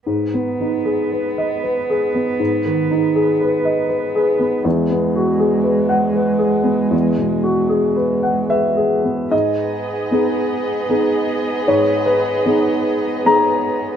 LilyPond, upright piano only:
\new Staff \with { instrumentName = "Upright piano" } { \time 3/4 \key gis \minor \tempo 4 = 77 << { r2. | r2. | r2. | r2 e''4 |
dis''2. | cis''8 b'4. ais''4 | } \\ { \tuplet 3/2 { gis,8 b8 dis'8 gis'8 b'8 dis''8 b'8 gis'8 b8 } | \tuplet 3/2 { gis,8 dis8 dis'8 gis'8 b'8 dis''8 b'8 gis'8 b8 } | \tuplet 3/2 { e,8 b8 fis'8 gis'8 b'8 fis''8 b'8 gis'8 b8 } | \tuplet 3/2 { e,8 b,8 fis'8 gis'8 b'8 fis''8 b'8 gis'8 b8 } |
gis,4 <b dis' gis'>4 <b dis' gis'>4 | gis,4 <b dis' gis'>4 <b dis' gis'>4 | } >> }